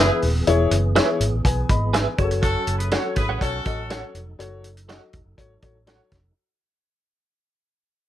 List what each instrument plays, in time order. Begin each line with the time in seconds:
Already playing: tonewheel organ E3 B3 G#4, horn section B3 E4 G#4, upright piano E4 G#4
0.00 clean electric guitar G#4 B4 E5, upright piano B4
0.22 fingered electric bass D#1, open hi-hat
0.47 fingered electric bass E1, upright piano E3 E4 G#4 C#5, closed hi-hat
0.71 fingered electric bass F#1, closed hi-hat
0.95 upright piano E4 G#4 C#5, clean electric guitar G#4 B4 E5, snare, closed hi-hat
1.20 fingered electric bass G#1, closed hi-hat
1.33 fingered electric bass A1
1.45 fingered electric bass B1, upright piano B4 G#5, kick, closed hi-hat
1.69 fingered electric bass G#1, upright piano D#5 B5, kick, closed hi-hat
1.93 clean electric guitar G#4 B4 E5, upright piano B4 G#5, snare, closed hi-hat
2.18 fingered electric bass F#1, tonewheel organ F#3 C#4 A4, upright piano F#4 G#4 C#5, kick, closed hi-hat
2.24 upright piano A4
2.31 closed hi-hat
2.42 horn section C#4 F#4 A4, kick, closed hi-hat
2.67 fingered electric bass F#1, closed hi-hat
2.78 horn section E4 G#4 B4, closed hi-hat
2.91 horn section F#4 A4 C#5, upright piano F#4 A4 C#5, clean electric guitar A4 C#5 F#5, snare, closed hi-hat
3.16 fingered electric bass G#1, horn section E4 G#4 B4, kick, closed hi-hat
3.29 fingered electric bass A1, clean electric guitar A4 C#5 F#5
3.41 fingered electric bass B1, horn section C#4 F#4 A4, upright piano F#4 A4 C#5, kick, closed hi-hat
3.65 fingered electric bass A1, upright piano F#4 A4 D#5, kick, closed hi-hat
3.90 upright piano F#4 A4 C#5, clean electric guitar A4 C#5 F#5, snare, closed hi-hat
4.14 fingered electric bass F1, tonewheel organ D#4, closed hi-hat
4.39 fingered electric bass F#1, upright piano F#4 A4 C#5, closed hi-hat
4.64 closed hi-hat
4.77 closed hi-hat
4.88 upright piano F#4 A4 D#5, clean electric guitar A4 C#5 F#5, snare, closed hi-hat
5.13 fingered electric bass E1, kick, closed hi-hat
5.26 fingered electric bass F#1
5.37 fingered electric bass G#1, upright piano F#4 A4 C#5, kick, closed hi-hat
5.62 fingered electric bass A1, upright piano F#4 A4 C#5, kick, closed hi-hat
5.86 upright piano F#4 A4 C#5, clean electric guitar A4 C#5 F#5, snare, closed hi-hat
6.12 fingered electric bass F1, kick, snare, closed hi-hat